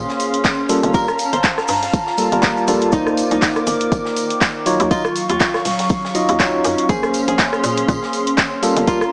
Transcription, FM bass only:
0.83 0.92 G1 loud
1.33 1.42 G1 medium
1.69 1.89 G2 medium
2.32 2.64 G1 loud
2.68 2.79 A#1 medium
2.93 3.27 C2 loud
3.31 3.40 C2 medium
3.67 3.87 G1 medium
3.92 4.03 G1 loud
4.80 4.89 D#2 loud
5.30 5.38 D#2 medium
5.66 5.86 D#1 medium
6.29 6.61 D#2 loud
6.65 6.76 F#2 medium
6.89 7.23 A#1 loud
7.28 7.37 A#1 medium
7.64 7.84 A#2 medium
7.88 8.00 A#2 loud
8.77 8.85 G1 loud

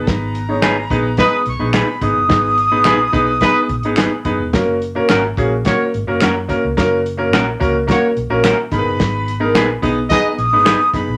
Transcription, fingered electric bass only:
0.07 0.87 G#1 medium
0.90 1.22 A#1 medium
1.47 1.57 B1 loud
1.60 1.81 A#1 medium
2.01 2.12 G#1 medium
2.17 2.30 F#1 medium
2.30 2.85 G#1 medium
2.85 3.07 A#1 medium
3.13 3.45 B1 medium
3.70 3.84 A#1 medium
3.84 4.05 G#1 medium
4.25 4.36 F#2 medium
4.40 4.50 E1 medium
4.53 4.95 F#1 medium
5.11 5.31 G#1 loud
5.37 5.69 A#1 medium
5.94 6.04 G#1 loud
6.08 6.18 F#1 medium
6.21 6.52 F#2 medium
6.64 6.74 C#2 medium
6.77 7.33 F#1 loud
7.33 7.54 A#1 loud
7.61 7.92 C#2 medium
8.17 8.27 B1 medium
8.30 8.51 A#1 medium
8.72 8.82 G#1 medium
8.85 8.96 F#1 medium
8.99 9.55 G#1 loud
9.55 9.76 A#1 loud
9.83 10.14 B1 medium
10.38 10.49 A#1 medium
10.93 11.04 F#2 medium
11.08 11.17 A#1 medium

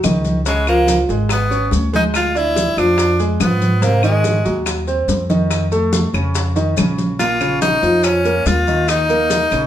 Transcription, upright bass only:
0.04 1.03 C#2 medium
1.09 1.68 G#1 medium
1.72 2.71 D2 medium
2.77 3.36 F2 medium
3.40 4.39 G#2 medium
4.45 5.05 D#2 medium
5.08 6.07 F2 medium
6.13 6.73 F2 medium
6.77 7.76 A#1 medium
7.83 8.42 F2 medium
8.46 9.45 D#2 medium
9.51 9.67 A#1 medium

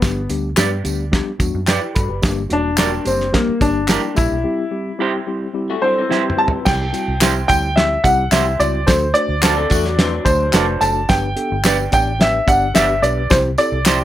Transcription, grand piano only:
0.00 0.26 B3 medium
2.53 3.09 D4 medium
3.07 3.35 C4 medium
3.34 3.63 A#3 medium
3.62 4.19 D4 medium
4.16 5.24 E4 medium
5.82 6.40 C5 medium
6.38 6.45 A5 medium
6.65 7.47 G5 medium
7.48 7.75 G5 loud
7.76 8.05 E5 loud
8.04 8.33 F#5 medium
8.32 8.61 E5 medium
8.60 8.89 D5 medium
8.87 9.16 C5 medium
9.14 10.29 D5 loud
10.25 10.83 C5 medium
10.81 11.10 A5 medium
11.09 11.92 G5 medium
11.94 12.22 G5 medium
12.21 12.47 E5 loud
12.48 12.77 F#5 medium
12.75 13.04 E5 loud
13.02 13.31 D5 medium
13.30 13.37 C5 medium
13.58 14.04 D5 loud

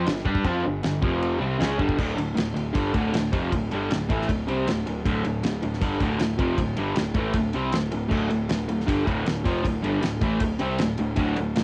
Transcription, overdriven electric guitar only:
0.07 0.22 G2 medium
0.07 0.22 D3 medium
0.26 0.44 G3 medium
0.26 0.45 D4 loud
0.26 0.45 G4 loud
0.44 0.63 F3 loud
0.44 0.64 C4 loud
0.44 0.64 F4 loud
0.63 0.79 G2 medium
0.63 0.79 D3 medium
0.84 0.99 G2 medium
0.84 0.99 D3 medium
1.02 1.39 F2 loud
1.02 1.38 C3 medium
1.02 1.41 F3 loud
1.39 1.59 C3 medium
1.39 1.58 G3 loud
1.39 1.59 C4 medium
1.59 1.78 C#3 medium
1.59 1.78 G#3 loud
1.59 1.79 C#4 loud
1.78 1.96 G2 medium
1.78 1.97 D3 medium
1.78 1.98 G3 loud
1.97 2.14 D2 medium
1.97 2.15 A2 medium
1.97 2.17 D3 loud
2.16 2.32 D2 medium
2.16 2.32 A2 medium
2.34 2.51 D2 medium
2.34 2.51 A2 medium
2.54 2.71 D2 medium
2.54 2.70 A2 medium
2.74 2.93 G2 loud
2.74 2.93 D3 loud
2.74 2.94 G3 loud
2.94 3.13 D2 medium
2.94 3.13 A2 loud
2.94 3.14 D3 loud
3.14 3.29 D2 medium
3.14 3.29 A2 medium
3.32 3.51 F2 medium
3.32 3.52 C3 medium
3.32 3.52 F3 loud
3.52 3.67 D2 medium
3.52 3.68 A2 medium
3.71 3.90 G2 medium
3.71 3.90 D3 medium
3.71 3.91 G3 medium
3.91 4.06 D2 medium
3.91 4.06 A2 medium
4.09 4.28 A2 medium
4.09 4.28 E3 loud
4.09 4.29 A3 loud
4.29 4.44 D2 medium
4.29 4.44 A2 medium
4.47 4.66 C3 medium
4.47 4.67 G3 loud
4.47 4.67 C4 loud
4.67 4.82 D2 medium
4.67 4.83 A2 medium
4.86 5.01 D2 medium
4.86 5.02 A2 medium
5.05 5.24 D2 loud
5.05 5.24 A2 medium
5.05 5.25 D3 loud
5.25 5.40 D2 medium
5.25 5.40 A2 medium
5.43 5.59 D2 medium
5.43 5.59 A2 medium
5.62 5.78 D2 medium
5.62 5.78 A2 medium
5.81 6.00 G2 medium
5.81 6.00 D3 loud
5.81 6.01 G3 loud
6.00 6.19 D2 medium
6.00 6.19 A2 loud
6.00 6.20 D3 loud
6.20 6.35 D2 medium
6.20 6.35 A2 medium
6.38 6.57 F2 medium
6.38 6.58 C3 medium
6.38 6.58 F3 medium
6.58 6.73 D2 medium
6.58 6.74 A2 medium
6.77 6.96 G2 medium
6.77 6.96 D3 medium
6.77 6.97 G3 medium
6.96 7.12 D2 medium
6.96 7.12 A2 medium
7.14 7.33 A2 medium
7.14 7.34 E3 loud
7.14 7.35 A3 loud
7.35 7.50 D2 medium
7.35 7.50 A2 medium
7.54 7.72 C3 medium
7.54 7.73 G3 medium
7.54 7.73 C4 loud
7.73 7.88 D2 medium
7.73 7.88 A2 medium
7.92 8.07 D2 medium
7.92 8.07 A2 medium
8.09 8.28 D2 loud
8.09 8.29 A2 medium
8.09 8.30 D3 loud
8.29 8.45 D2 medium
8.29 8.45 A2 medium
8.50 8.65 D2 medium
8.50 8.65 A2 medium
8.69 8.84 D2 medium
8.69 8.84 A2 medium
8.87 9.05 G2 loud
8.87 9.06 D3 loud
8.87 9.07 G3 loud
9.05 9.24 D2 medium
9.05 9.24 A2 medium
9.05 9.26 D3 medium
9.25 9.41 D2 medium
9.25 9.41 A2 medium
9.44 9.63 F2 medium
9.44 9.63 C3 medium
9.44 9.64 F3 loud
9.63 9.79 D2 medium
9.63 9.79 A2 medium
9.83 10.01 G2 medium
9.83 10.02 D3 medium
9.83 10.03 G3 medium
10.02 10.18 D2 medium
10.02 10.18 A2 medium
10.21 10.40 A2 medium
10.21 10.41 E3 medium
10.21 10.41 A3 medium
10.41 10.56 D2 medium
10.41 10.56 A2 medium
10.59 10.78 C3 medium
10.59 10.79 G3 medium
10.59 10.79 C4 medium
10.80 10.95 D2 medium
10.80 10.95 A2 medium
10.99 11.14 D2 medium
10.99 11.14 A2 medium
11.16 11.36 D2 loud
11.16 11.36 A2 loud
11.16 11.37 D3 loud
11.37 11.52 D2 medium
11.37 11.53 A2 medium
11.56 11.64 D2 medium
11.56 11.64 A2 medium

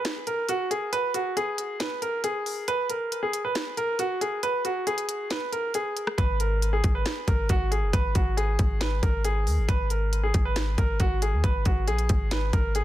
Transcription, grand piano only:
0.00 0.25 B4 medium
0.27 0.46 A#4 medium
0.49 0.67 F#4 medium
0.71 0.89 G#4 medium
0.93 1.11 B4 loud
1.14 1.33 F#4 medium
1.37 1.78 G#4 medium
1.80 1.99 B4 medium
2.02 2.21 A#4 medium
2.24 2.65 G#4 medium
2.68 2.86 B4 loud
2.90 3.21 A#4 medium
3.23 3.41 G#4 medium
3.45 3.75 B4 medium
3.77 3.96 A#4 medium
3.99 4.18 F#4 medium
4.21 4.40 G#4 medium
4.43 4.62 B4 loud
4.65 4.83 F#4 medium
4.87 5.28 G#4 medium
5.31 5.49 B4 medium
5.52 5.71 A#4 medium
5.75 6.16 G#4 medium
6.18 6.36 B4 loud
6.40 6.71 A#4 medium
6.73 6.91 G#4 medium
6.95 7.26 B4 medium
7.28 7.46 A#4 medium
7.50 7.68 F#4 medium
7.71 7.90 G#4 medium
7.93 8.12 B4 loud
8.15 8.34 F#4 medium
8.37 8.78 G#4 medium
8.80 8.99 B4 medium
9.03 9.21 A#4 medium
9.25 9.66 G#4 medium
9.69 9.87 B4 loud
9.91 10.21 A#4 medium
10.23 10.42 G#4 medium
10.45 10.76 B4 medium
10.78 10.97 A#4 medium
11.00 11.19 F#4 medium
11.22 11.40 G#4 medium
11.44 11.62 B4 loud
11.66 11.84 F#4 medium
11.88 12.29 G#4 medium
12.31 12.50 B4 medium
12.53 12.72 A#4 medium
12.75 12.84 G#4 medium

